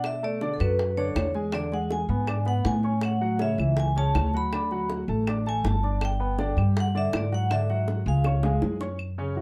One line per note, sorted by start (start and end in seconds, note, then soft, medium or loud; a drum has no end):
0.00 0.54 B2 medium
0.00 0.17 D4 medium
0.00 0.16 D5 medium
0.00 0.17 D6 medium
0.00 high bongo medium
0.05 0.23 E5 medium
0.05 claves medium
0.23 0.38 A3 medium
0.23 0.38 A4 medium
0.23 0.52 D5 medium
0.23 0.39 A5 medium
0.41 0.57 D3 medium
0.41 0.57 D4 medium
0.41 0.57 D5 medium
0.41 high bongo medium
0.54 0.60 A4 medium
0.60 1.12 F#2 medium
0.60 0.91 F#3 medium
0.60 0.91 F#4 medium
0.60 0.99 B4 medium
0.60 0.91 F#5 medium
0.60 high bongo soft
0.60 claves medium
0.79 high bongo medium
0.97 1.28 D3 medium
0.97 1.28 D4 medium
0.97 1.32 C#5 medium
0.97 1.28 C#5 medium
0.97 high bongo soft
1.15 2.04 E2 medium
1.15 high bongo medium
1.15 low bongo medium
1.15 claves medium
1.34 1.50 G#3 medium
1.34 1.50 G#4 medium
1.34 1.50 G#5 medium
1.34 high bongo soft
1.52 1.69 D3 medium
1.52 1.69 D4 medium
1.52 1.69 D5 medium
1.52 1.73 D5 medium
1.52 high bongo medium
1.52 claves medium
1.72 2.03 G#3 medium
1.72 2.03 G#4 medium
1.72 1.82 F#5 medium
1.72 2.04 G#5 medium
1.72 high bongo soft
1.91 2.49 G#5 medium
1.91 high bongo medium
2.09 2.61 G#2 medium
2.09 2.25 B3 medium
2.09 2.25 B4 medium
2.09 2.25 B5 medium
2.27 2.44 D4 medium
2.27 2.44 D5 medium
2.27 2.44 D6 medium
2.27 high bongo medium
2.27 claves medium
2.45 2.77 B3 medium
2.45 2.77 B4 medium
2.45 2.65 F#5 medium
2.45 2.77 B5 medium
2.45 high bongo soft
2.65 3.53 A2 medium
2.65 3.01 G#5 medium
2.65 high bongo medium
2.65 low bongo medium
2.83 3.15 C#4 medium
2.83 3.15 C#5 medium
2.83 3.15 C#6 medium
2.83 high bongo soft
3.01 3.39 F#5 medium
3.01 high bongo medium
3.01 claves medium
3.21 3.37 F#3 medium
3.21 3.37 F#4 medium
3.21 3.37 F#5 medium
3.39 3.55 C#3 medium
3.39 3.56 C#4 medium
3.39 3.56 C#5 medium
3.39 3.80 E5 loud
3.39 high bongo medium
3.58 4.11 C#2 medium
3.58 3.90 E3 medium
3.58 3.90 E4 medium
3.58 3.90 E5 medium
3.58 high bongo soft
3.58 claves medium
3.77 3.98 G#5 loud
3.77 high bongo medium
3.96 4.27 C#3 medium
3.96 4.27 C#4 medium
3.96 4.28 C#5 medium
3.96 4.32 A5 loud
3.96 high bongo soft
4.15 5.03 D2 medium
4.15 high bongo medium
4.15 low bongo medium
4.15 claves medium
4.34 4.49 F#3 medium
4.34 4.49 F#4 medium
4.34 4.50 F#5 medium
4.34 4.88 B5 loud
4.34 high bongo soft
4.53 4.68 D3 medium
4.53 4.68 D4 medium
4.53 4.69 D5 medium
4.53 high bongo medium
4.53 claves medium
4.71 5.02 F#3 medium
4.71 5.02 F#4 medium
4.71 5.02 F#5 medium
4.71 high bongo soft
4.90 high bongo medium
5.08 5.60 A1 loud
5.08 5.24 A3 medium
5.08 5.24 A4 medium
5.08 5.24 A5 medium
5.27 5.43 D4 medium
5.27 5.43 D5 medium
5.27 5.43 D6 medium
5.27 high bongo medium
5.27 claves medium
5.46 5.77 A3 medium
5.46 5.77 A4 medium
5.46 5.67 G#5 loud
5.46 5.77 A5 medium
5.46 high bongo soft
5.64 6.52 G1 medium
5.64 6.00 A5 medium
5.64 high bongo medium
5.64 low bongo medium
5.83 6.14 D4 medium
5.83 6.14 D5 medium
5.83 6.14 D6 medium
5.83 high bongo soft
6.01 6.56 G5 loud
6.01 high bongo medium
6.01 claves medium
6.20 6.35 B3 medium
6.20 6.36 B4 medium
6.20 6.36 B5 medium
6.38 6.54 D3 medium
6.38 6.54 D4 medium
6.38 6.55 D5 medium
6.38 high bongo medium
6.57 7.09 G2 loud
6.57 6.88 G3 medium
6.57 6.88 G4 medium
6.57 6.88 G5 medium
6.57 high bongo soft
6.57 claves medium
6.77 6.88 F#5 loud
6.77 high bongo medium
6.95 7.25 D3 medium
6.95 7.26 D4 medium
6.95 7.26 D5 medium
6.95 7.15 E5 medium
6.95 high bongo soft
7.13 8.00 G#2 medium
7.13 high bongo medium
7.13 low bongo medium
7.13 claves medium
7.17 7.33 D5 medium
7.32 7.47 F#3 medium
7.32 7.48 F#4 medium
7.32 7.48 F#5 medium
7.32 7.42 F#5 medium
7.32 high bongo soft
7.51 7.66 D3 medium
7.51 7.66 D4 medium
7.51 7.67 D5 medium
7.51 7.86 E5 medium
7.51 high bongo medium
7.51 claves medium
7.69 8.00 F#3 medium
7.69 8.00 F#4 medium
7.69 8.00 F#5 medium
7.69 high bongo soft
7.88 high bongo medium
8.06 8.58 C#2 loud
8.06 8.22 G#3 medium
8.06 8.22 G#4 medium
8.06 8.59 F5 medium
8.06 8.22 G#5 medium
8.24 8.41 C#4 medium
8.24 8.41 C#5 medium
8.24 8.41 C#6 medium
8.24 high bongo medium
8.24 claves medium
8.43 8.74 G#3 medium
8.43 8.75 G#4 medium
8.43 8.75 G#5 medium
8.43 high bongo medium
8.62 9.41 F#2 medium
8.62 low bongo medium
8.81 8.96 C#4 medium
8.81 8.96 C#5 medium
8.81 8.96 C#6 medium
8.81 low bongo medium
8.99 claves medium
9.18 9.33 C#3 medium
9.18 9.34 C#4 medium
9.18 9.34 C#5 medium
9.36 9.41 E3 medium
9.36 9.41 E4 medium
9.36 9.41 F#4 medium